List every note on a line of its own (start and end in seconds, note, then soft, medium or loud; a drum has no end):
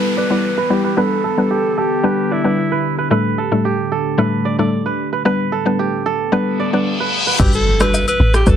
0.00 0.95 E3 medium
0.00 0.27 G3 medium
0.00 0.27 B3 medium
0.00 3.07 B3 medium
0.00 0.27 E4 medium
0.00 0.78 G4 medium
0.00 5.21 G4 medium
0.00 0.95 A4 medium
0.00 0.13 B4 loud
0.00 0.27 B4 loud
0.00 0.57 B4 medium
0.00 downlifter medium
0.17 0.67 B4 loud
0.17 0.30 D5 medium
0.30 0.50 G3 medium
0.30 0.50 B3 medium
0.30 0.50 E4 medium
0.30 0.50 B4 medium
0.30 1.42 D5 medium
0.58 0.84 B4 medium
0.70 0.90 G3 medium
0.70 0.90 B3 medium
0.70 0.90 E4 medium
0.70 1.00 G4 medium
0.70 0.91 B4 medium
0.84 0.97 B4 medium
0.97 7.36 D3 medium
0.97 1.17 G3 medium
0.97 1.17 B3 medium
0.97 1.17 D4 medium
0.97 1.80 A4 medium
0.97 1.17 B4 loud
0.97 2.04 B4 medium
1.24 1.77 A4 medium
1.38 1.57 G3 medium
1.38 1.57 B3 medium
1.38 1.58 D4 medium
1.38 1.58 B4 medium
1.51 2.92 G4 medium
1.78 2.34 G4 medium
1.78 3.09 A4 medium
2.03 2.41 G3 medium
2.03 2.41 B3 medium
2.03 2.41 D4 medium
2.03 2.41 B4 loud
2.03 2.71 B4 medium
2.31 2.85 E4 medium
2.31 2.45 D5 medium
2.44 2.64 G3 medium
2.44 2.64 B3 medium
2.44 2.64 D4 medium
2.44 2.65 B4 medium
2.44 3.56 D5 medium
2.72 2.98 B4 medium
2.98 3.11 B4 medium
3.10 3.31 A2 medium
3.10 5.23 A2 medium
3.10 3.31 G3 medium
3.10 3.31 A3 medium
3.10 5.23 A3 medium
3.10 3.31 D4 medium
3.10 3.31 A4 loud
3.10 4.18 B4 loud
3.38 3.91 A4 medium
3.51 3.71 A2 medium
3.51 3.72 G3 medium
3.51 3.72 A3 medium
3.51 3.72 D4 medium
3.51 3.72 A4 medium
3.65 5.06 G4 medium
3.92 5.24 A4 medium
4.18 4.55 A2 medium
4.18 4.55 G3 medium
4.18 4.55 A3 medium
4.18 4.56 D4 medium
4.18 4.56 A4 medium
4.18 4.85 B4 medium
4.45 4.59 D5 medium
4.59 4.79 A2 medium
4.59 4.79 G3 medium
4.59 4.79 A3 medium
4.59 4.79 D4 medium
4.59 4.79 A4 medium
4.59 5.70 D5 medium
4.86 5.12 B4 medium
5.13 5.25 B4 medium
5.25 5.46 G3 medium
5.25 5.46 B3 medium
5.25 7.38 B3 medium
5.25 5.46 D4 medium
5.25 7.38 G4 medium
5.25 6.32 B4 medium
5.25 5.46 B4 loud
5.52 6.05 A4 medium
5.65 5.86 G3 medium
5.65 5.86 B3 medium
5.65 5.86 D4 medium
5.65 5.86 B4 medium
5.79 7.20 G4 medium
6.06 7.38 A4 medium
6.32 6.70 G3 medium
6.32 6.70 B3 medium
6.32 6.70 D4 medium
6.32 6.70 B4 loud
6.32 7.00 B4 medium
6.32 reverse cymbal medium
6.60 6.73 D5 medium
6.73 6.93 G3 medium
6.73 6.93 B3 medium
6.73 6.93 D4 medium
6.73 6.93 B4 medium
6.73 7.84 D5 medium
7.00 7.26 B4 medium
7.27 8.50 B4 medium
7.39 8.04 G1 loud
7.39 7.60 G3 medium
7.39 7.60 D4 medium
7.39 7.60 F#4 medium
7.39 7.53 G4 medium
7.39 7.60 B4 loud
7.39 kick loud
7.39 crash medium
7.39 impact medium
7.39 high agogo medium
7.39 shaker medium
7.53 7.83 A4 loud
7.53 shaker soft
7.80 8.00 G3 medium
7.80 8.00 D4 medium
7.80 8.00 F#4 medium
7.80 8.00 B4 medium
7.80 8.08 B4 loud
7.80 cross-stick loud
7.80 high agogo medium
7.80 shaker medium
7.94 low woodblock medium
7.94 shaker medium
8.08 8.33 B4 loud
8.08 high agogo medium
8.08 shaker soft
8.20 8.43 A1 loud
8.34 8.50 G4 medium
8.34 cross-stick loud
8.34 shaker medium
8.46 8.56 G1 loud
8.46 8.56 G3 medium
8.46 8.56 D4 medium
8.46 8.56 F#4 medium
8.46 8.56 A4 loud
8.46 8.56 B4 loud
8.46 kick loud
8.46 shaker medium